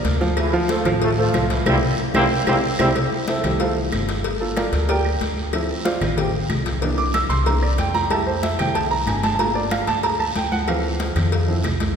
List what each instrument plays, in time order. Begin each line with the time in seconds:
Already playing: grand piano A#3 A#4 D5
0.04 upright bass D2, cowbell, high conga, short guiro
0.21 grand piano F3 F4 F5, high conga, short guiro
0.37 trombone section E3 E4, cowbell, high conga, long guiro, claves
0.53 grand piano F3 F4 F5, trombone section F3 F4, high conga
0.69 grand piano A3 A4 C5, cowbell, high conga, short guiro
0.85 upright bass A1, grand piano F3 F4 F5, cowbell, high conga, low conga, short guiro, claves
1.02 trombone section A2 A3, cowbell, high conga, long guiro
1.18 trombone section F3 F4, grand piano A3 A4 C5, high conga
1.33 upright bass C2, grand piano F3 F4 F5, cowbell, high conga, short guiro, claves
1.50 trombone section E3 E4, cowbell, high conga, short guiro
1.66 upright bass C2, trombone section G3 A#3 C4, grand piano C4 E4 G4, cowbell, high conga, long guiro, claves
2.14 upright bass C2, trombone section G3 A#3 C4, grand piano C4 E4 G4, cowbell, high conga, long guiro, claves
2.46 upright bass C2, trombone section G3 A#3 C4, grand piano C4 E4 G4, cowbell, high conga, long guiro, claves
2.79 upright bass C2, trombone section G3 A#3 C4, grand piano C4 E4 G4, cowbell, high conga, long guiro, claves
2.95 cowbell, high conga, long guiro, claves
3.12 high conga
3.28 grand piano E4 A4 C5 E5, cowbell, high conga, short guiro
3.44 upright bass C2, grand piano G3 A3 E4, cowbell, high conga, low conga, short guiro, claves
3.60 grand piano F4 A4 C5 F5, cowbell, high conga, long guiro
3.77 high conga
3.92 upright bass G1, cowbell, high conga, short guiro, claves
4.09 cowbell, high conga, short guiro
4.24 cowbell, high conga, long guiro
4.40 grand piano A#3 F4 A4, high conga
4.57 grand piano F4 A#4 D5 F5, cowbell, high conga, short guiro, claves
4.72 upright bass D2, cowbell, high conga, short guiro
4.88 grand piano G4 A#4 D5 G5, cowbell, high conga, long guiro
5.05 high conga, claves
5.21 upright bass D2, cowbell, high conga, short guiro
5.37 short guiro
5.53 grand piano F3 C4 E4, cowbell, high conga, long guiro, claves
5.69 high conga
5.85 grand piano F4 C5 D5 F5, cowbell, high conga, short guiro
6.01 upright bass A1, cowbell, high conga, low conga, short guiro, claves
6.17 grand piano G4 G5, cowbell, high conga, low conga, long guiro
6.34 high conga
6.49 upright bass C2, cowbell, high conga, short guiro, claves
6.66 cowbell, high conga, short guiro
6.81 grand piano E3 A#3 D4, cowbell, high conga, long guiro
6.98 grand piano D6, high conga
7.14 grand piano E6, cowbell, high conga, short guiro, claves
7.29 upright bass C2, grand piano C6, cowbell, high conga, short guiro
7.46 grand piano E3 A#3 D4 A#5, cowbell, high conga, long guiro
7.62 grand piano D5, high conga, claves
7.78 upright bass F2, grand piano G5, cowbell, high conga, short guiro
7.94 grand piano A#5, high conga, short guiro
8.10 grand piano G3 A3 E4 A5, cowbell, high conga, long guiro, claves
8.26 grand piano C5, high conga
8.43 grand piano E5, cowbell, high conga, short guiro
8.58 upright bass C2, grand piano G3 A3 E4 G5, cowbell, high conga, low conga, short guiro, claves
8.75 grand piano A5, cowbell, high conga, long guiro
8.91 grand piano A#5, high conga
9.06 upright bass G1, grand piano G#5, cowbell, high conga, short guiro, claves
9.23 grand piano A5, cowbell, high conga, short guiro
9.35 grand piano A3 A5
9.39 grand piano A#3 F4 A#5, cowbell, high conga
9.55 grand piano D5, high conga
9.71 grand piano F5, cowbell, high conga, short guiro, claves
9.87 upright bass D2, grand piano A5, cowbell, high conga, short guiro
10.03 grand piano A#5, cowbell, high conga, long guiro
10.19 grand piano A5, high conga, claves
10.35 upright bass D2, grand piano G5, cowbell, high conga, short guiro
10.52 grand piano F#5, high conga, short guiro
10.68 grand piano E3 F3 C4 F5, cowbell, high conga, long guiro, claves
10.84 high conga
11.00 cowbell, high conga, short guiro
11.15 upright bass F2, cowbell, high conga, low conga, short guiro, claves
11.32 cowbell, high conga, long guiro
11.48 grand piano F3 C4 E4, high conga
11.64 upright bass C2, cowbell, high conga, short guiro, claves
11.80 cowbell, high conga, short guiro